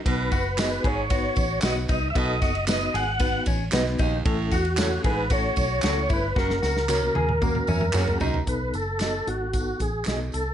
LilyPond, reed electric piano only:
\new Staff \with { instrumentName = "Reed electric piano" } { \time 4/4 \key b \mixolydian \tempo 4 = 114 <b dis' fis' b'>8 r8 <b dis' fis' gis'>8 r8 <b dis' fis' b'>8 r8 <b dis' fis' b'>8 r8 | <b dis' fis' a'>8 r8 <b dis' fis' b'>8 r8 <b dis' fis' b'>8 r8 <b dis' fis' b'>8 r8 | <a cis' e' a'>8 r8 <a cis' e' a'>8 r8 <a cis' e' a'>8 r8 <a cis' e' a'>8 r8 | <ais cis' fis' ais'>8 r8 <ais cis' fis' ais'>8 r8 <ais cis' fis' ais'>8 e''8 <ais cis' fis' gis' fis''>8 ais''8 |
<b dis' a'>8 r8 <b dis' a'>8 <b dis' a'>8 <b dis' a'>8 r8 <b dis' a'>8 r8 | }